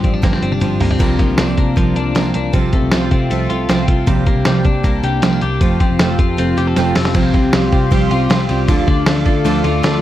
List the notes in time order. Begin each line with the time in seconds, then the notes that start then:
Already playing: G2 F3
0.03 A1 F3 C4 D4 G4, kick, closed hi-hat
0.14 D4
0.22 G1 G2 D3 F3 A#3 C4 D4 G4, kick, snare, closed hi-hat
0.33 C4, snare
0.42 G1 F3 C4 D4 G4, closed hi-hat
0.52 D4, high tom
0.60 G1 F3 C4 D4 G4, closed hi-hat, mid tom
0.79 G1 F3 A#3 C4 D4 G4, floor tom, open hi-hat
0.91 C4, floor tom
0.99 C2 C3 F3 A#3 D4 A#4, kick, closed hi-hat, crash
1.18 F3 A#3 D4 A#4, kick, closed hi-hat
1.29 C2
1.38 C2 C3 F3 A#3 D4 A#4, snare, closed hi-hat
1.57 C3 A#3 D4 A#4, kick, closed hi-hat
1.76 C2 F3 A#3 D4 A#4, kick, closed hi-hat
1.95 C2 A#3 D4 A#4, closed hi-hat
2.15 C2 C3 F3 A#3 D4 A#4, snare, closed hi-hat
2.34 C2 A#3 D4 A#4, closed hi-hat
2.53 C2 C3 F3 C4 F4 A4, kick, closed hi-hat
2.72 A3 C4 F4 A4, kick, closed hi-hat
2.83 C2
2.92 C2 C3 F3 C4 F4 A4, snare, closed hi-hat
3.11 C3 C4 F4 A4, kick, closed hi-hat
3.30 C2 F3 A3 C4 F4 A4, closed hi-hat
3.50 C2 C4 F4 A4, closed hi-hat
3.69 C2 C3 F3 C4 F4 A4, snare, closed hi-hat
3.87 C2 C4 F4 A4, kick, closed hi-hat
4.06 C2 C3 F3 G3 A#3 D4 G4, kick, closed hi-hat
4.25 G3 A#3 D4 G4, kick, closed hi-hat
4.36 C2
4.45 C3 F3 G3 A#3 D4 G4, snare, closed hi-hat
4.64 C3 G3 A#3 D4 G4, kick, closed hi-hat
4.83 C2 G3 A#3 D4 G4, kick, closed hi-hat
5.03 C2 G3 A#3 D4 G4, closed hi-hat
5.22 C2 C3 F3 G3 A#3 C4 D4 G4, snare, closed hi-hat
5.33 D4
5.41 C2 G3 A#3 D4 G4, closed hi-hat
5.61 F1 F3 A3 C4 F4 G4, kick, closed hi-hat
5.80 C4 F4 G4, kick, closed hi-hat
5.90 F1
5.99 F1 F3 A3 C4 F4 G4 A4, snare, closed hi-hat
6.18 F2 C4 F4 G4, kick, closed hi-hat
6.37 F1 A3 C4 F4 G4, closed hi-hat
6.57 F1 C4 F4 G4, closed hi-hat
6.67 A4
6.76 F1 F3 A3 C4 F4 G4, snare, closed hi-hat
6.95 F1 C4 F4 G4 A4, snare, open hi-hat
7.05 snare
7.15 C2 C3 F3 C4 F4 G4 F5 C6, kick, crash, ride
7.33 C2 C4 F4 G4, kick, ride
7.52 C2 F3 G3 C4 F4 G4, snare, ride
7.72 C3 C4 F4 G4, kick, ride
7.91 C2 C3 F3 G3 C4 F4 G4, kick, ride
8.10 C2 C4 F4 G4, ride
8.29 C2 F3 C4 F4 G4, snare, ride
8.49 C2 G3 C4 F4 G4, ride
8.68 D2 D3 F3 D4 F4 A4 F5 D6, kick, ride
8.87 D2 D4 F4 A4, kick, ride
9.06 D2 F3 A3 D4 F4 A4, snare, ride
9.25 D3 D4 F4 A4, kick, ride
9.45 D2 D3 F3 A3 D4 F4 A4, ride
9.64 D2 D4 F4 A4, ride
9.83 D2 F3 D4 F4 A4, snare, ride